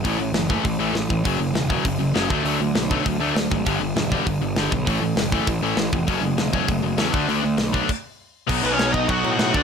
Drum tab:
CC |--------|--------|--------|--------|
HH |o-o-o-o-|o-o-o-o-|o-o-o-o-|o-o-o-o-|
SD |--o---o-|--o---o-|--o---o-|--o---o-|
BD |o--oo--o|o--oo--o|---oo--o|o--oo--o|

CC |--------|--------|----x---|xxxxxxxx|
HH |o-o-o-o-|o-o-o-o-|o-o-----|--------|
SD |--o---o-|--o---o-|--o-----|--o---o-|
BD |o--oo--o|o--oo--o|---oo---|o--oo--o|